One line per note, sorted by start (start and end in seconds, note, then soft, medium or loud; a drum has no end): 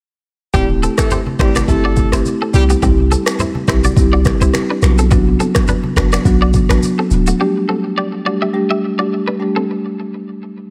0.54 0.87 D1 loud
0.54 0.66 G3 loud
0.54 1.07 A3 loud
0.54 1.07 C4 medium
0.54 0.64 C4 medium
0.54 1.07 E4 medium
0.54 0.66 G4 loud
0.54 1.07 G4 loud
0.54 0.64 G4 loud
0.54 kick loud
0.54 low conga medium
0.54 shaker medium
0.70 high conga medium
0.82 0.93 C4 medium
0.82 0.92 A4 medium
0.82 high conga medium
0.82 shaker medium
0.98 1.21 A3 medium
0.98 1.21 A4 loud
0.98 finger snap medium
0.98 kick loud
0.98 cross-stick loud
0.98 shaker medium
1.10 1.21 G4 medium
1.10 1.21 C5 medium
1.10 low conga medium
1.10 shaker medium
1.26 high conga medium
1.39 1.61 A1 medium
1.39 1.62 G3 medium
1.39 1.56 A3 medium
1.39 1.56 C4 medium
1.39 1.56 E4 medium
1.39 1.50 E4 medium
1.39 1.62 G4 loud
1.39 1.56 G4 medium
1.39 1.49 C5 medium
1.39 finger snap medium
1.39 kick medium
1.39 cross-stick loud
1.39 shaker medium
1.55 1.64 F#4 medium
1.55 1.63 D5 medium
1.55 finger snap medium
1.55 cross-stick medium
1.55 high conga medium
1.55 shaker medium
1.68 2.01 G1 loud
1.68 2.09 A3 medium
1.68 2.10 A3 loud
1.68 2.09 C4 medium
1.68 2.09 E4 medium
1.68 2.09 G4 loud
1.68 2.10 A4 loud
1.68 kick medium
1.68 low conga medium
1.68 shaker medium
1.85 1.93 F#4 medium
1.85 1.92 D5 medium
1.96 kick loud
1.96 high conga medium
1.96 shaker medium
2.12 2.22 G1 medium
2.12 2.26 A3 medium
2.12 2.26 C4 medium
2.12 2.26 E4 medium
2.12 2.21 E4 medium
2.12 2.26 G4 medium
2.12 2.21 C5 medium
2.12 finger snap medium
2.12 cross-stick medium
2.12 shaker medium
2.25 high conga medium
2.25 shaker medium
2.42 2.50 C4 medium
2.42 2.49 A4 medium
2.53 2.75 C2 loud
2.53 2.70 G3 medium
2.53 2.63 G3 medium
2.53 2.70 C4 medium
2.53 2.70 E4 medium
2.53 2.63 G4 loud
2.53 2.70 G4 medium
2.53 high conga medium
2.53 shaker medium
2.70 2.78 B3 medium
2.70 2.78 G4 medium
2.70 shaker medium
2.82 3.16 C2 loud
2.82 3.35 G3 loud
2.82 3.35 C4 medium
2.82 2.93 C4 medium
2.82 3.36 E4 medium
2.82 3.36 G4 loud
2.82 2.92 G4 loud
2.82 kick loud
2.82 low conga medium
2.82 shaker medium
2.98 high conga medium
3.11 3.21 C4 medium
3.11 3.21 A4 medium
3.11 high conga medium
3.11 shaker medium
3.26 finger snap medium
3.26 cross-stick loud
3.26 shaker medium
3.39 3.50 E4 medium
3.39 3.49 C5 medium
3.39 low conga medium
3.39 shaker medium
3.55 high conga medium
3.68 3.89 B1 medium
3.68 3.84 G3 medium
3.68 3.84 C4 medium
3.68 3.84 E4 medium
3.68 3.78 E4 medium
3.68 3.85 G4 medium
3.68 3.78 C5 medium
3.68 finger snap medium
3.68 kick medium
3.68 cross-stick loud
3.68 shaker medium
3.84 3.93 F#4 medium
3.84 3.92 D5 medium
3.84 high conga medium
3.84 shaker medium
3.96 4.30 C2 loud
3.96 4.37 G3 loud
3.96 4.37 C4 medium
3.96 4.37 E4 medium
3.96 4.37 G4 loud
3.96 kick loud
3.96 low conga medium
3.96 shaker medium
4.13 4.21 F#4 medium
4.13 4.20 D5 medium
4.25 finger snap medium
4.25 kick medium
4.25 cross-stick medium
4.25 high conga medium
4.25 shaker medium
4.41 4.51 C2 medium
4.41 4.54 G3 medium
4.41 4.55 C4 medium
4.41 4.55 E4 medium
4.41 4.50 E4 medium
4.41 4.55 G4 medium
4.41 4.49 C5 medium
4.41 shaker medium
4.54 finger snap medium
4.54 cross-stick medium
4.54 high conga medium
4.54 shaker medium
4.70 4.78 D4 medium
4.70 4.78 B4 medium
4.82 5.37 B1 loud
4.82 4.99 F#3 medium
4.82 4.99 B3 medium
4.82 4.99 D4 medium
4.82 4.99 F#4 medium
4.82 finger snap medium
4.82 cross-stick medium
4.82 high conga medium
4.82 shaker medium
4.98 5.07 C4 medium
4.98 5.06 A4 medium
4.98 shaker medium
5.11 5.64 F#3 medium
5.11 5.64 B3 medium
5.11 5.21 B3 medium
5.11 5.64 D4 medium
5.11 5.64 F#4 loud
5.11 5.21 F#4 loud
5.11 kick loud
5.11 low conga medium
5.11 shaker medium
5.27 high conga medium
5.40 5.50 C4 medium
5.40 5.49 A4 medium
5.40 high conga medium
5.40 shaker medium
5.55 finger snap medium
5.55 kick loud
5.55 cross-stick loud
5.55 shaker medium
5.68 5.78 D4 medium
5.68 5.78 B4 medium
5.68 low conga medium
5.68 shaker medium
5.84 high conga medium
5.96 6.18 F#1 loud
5.96 6.13 F#3 medium
5.96 6.13 B3 medium
5.96 6.13 D4 medium
5.96 6.07 D4 medium
5.96 6.13 F#4 medium
5.96 6.07 B4 medium
5.96 finger snap medium
5.96 kick medium
5.96 cross-stick loud
5.96 shaker medium
6.12 6.21 F#4 medium
6.12 6.21 D5 medium
6.12 finger snap medium
6.12 cross-stick loud
6.12 high conga medium
6.12 shaker medium
6.25 6.58 B1 loud
6.25 6.66 F#3 loud
6.25 6.66 B3 medium
6.25 6.66 D4 medium
6.25 6.66 F#4 loud
6.25 kick medium
6.25 low conga medium
6.25 shaker medium
6.42 6.50 F#4 medium
6.42 6.49 D5 medium
6.53 kick loud
6.53 high conga medium
6.53 shaker medium
6.69 6.79 A1 loud
6.69 6.83 F#3 medium
6.69 6.83 B3 medium
6.69 6.83 D4 medium
6.69 6.78 D4 medium
6.69 6.83 F#4 medium
6.69 6.78 B4 medium
6.69 finger snap medium
6.69 cross-stick medium
6.69 shaker medium
6.83 high conga medium
6.83 shaker medium
6.99 7.07 C4 medium
6.99 7.06 A4 medium
7.11 7.32 D1 loud
7.11 7.27 F#3 medium
7.11 7.27 B3 medium
7.11 7.27 D4 medium
7.11 7.28 F#4 medium
7.11 high conga medium
7.11 shaker medium
7.27 7.36 A3 medium
7.27 7.35 F#4 medium
7.27 shaker medium
7.39 7.92 G3 loud
7.39 7.93 A3 medium
7.39 7.93 D4 medium
7.39 7.50 D4 medium
7.39 7.93 G4 loud
7.39 7.50 G4 loud
7.69 7.79 C4 medium
7.69 7.78 A4 medium
7.98 8.07 G4 medium
7.98 8.07 D5 medium
8.25 8.41 G3 medium
8.25 8.42 A3 medium
8.25 8.42 D4 medium
8.25 8.36 F#4 medium
8.25 8.42 G4 medium
8.25 8.35 D5 medium
8.42 8.50 G4 medium
8.42 8.49 E5 medium
8.53 8.94 G3 loud
8.53 8.94 A3 medium
8.53 8.94 D4 medium
8.53 8.94 G4 loud
8.70 8.78 G4 medium
8.70 8.78 E5 medium
8.98 9.12 G3 medium
8.98 9.12 A3 medium
8.98 9.12 D4 medium
8.98 9.07 F#4 medium
8.98 9.12 G4 medium
8.98 9.06 D5 medium
9.28 9.36 D4 medium
9.28 9.35 B4 medium
9.39 9.56 G3 medium
9.39 9.56 A3 medium
9.39 9.56 D4 medium
9.39 9.56 G4 medium
9.56 9.64 C4 medium
9.56 9.64 A4 medium